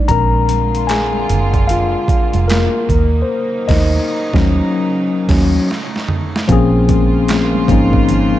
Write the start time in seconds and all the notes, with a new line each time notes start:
Already playing: G3 A3 D4 D#4 D5
0.08 A#1 D3 G#3 A#3 C4 D4 F4 A#4 A#5, kick, closed hi-hat, low conga
0.48 closed hi-hat, high conga
0.75 closed hi-hat
0.87 G#4 G#5, snare, clap, closed hi-hat, muted conga
1.13 high conga
1.29 F#1, closed hi-hat, high conga, low conga
1.54 kick, closed hi-hat
1.68 F4 F5, closed hi-hat, low conga
2.08 muted fingered electric bass stroke, kick, closed hi-hat, muted conga
2.33 F1, closed hi-hat, high conga
2.48 A#3 A#4, snare, clap, closed hi-hat, muted conga, high conga
2.89 D#2 C#3 F#3 D#4, kick, closed hi-hat, muted conga
3.22 C5
3.68 D#2 D#4 D#5, kick, snare, crash
4.33 D#2 F#3 C#4, kick, snare
5.29 D#2 F#3 C#4, kick, snare, crash
5.68 A3 D#4, snare
5.96 snare
6.09 mid tom
6.36 snare
6.48 A#1 C#3 F3 G#3 A#3 C4 C#4 F4, kick, closed hi-hat, low conga
6.52 G#4
6.88 kick, closed hi-hat, high conga
7.28 snare, clap, closed hi-hat
7.53 high conga
7.68 G#1 F3 A#3 C4 C#4, kick, closed hi-hat, muted conga, high conga, low conga
7.72 D#4
7.93 kick
8.09 closed hi-hat, muted conga, low conga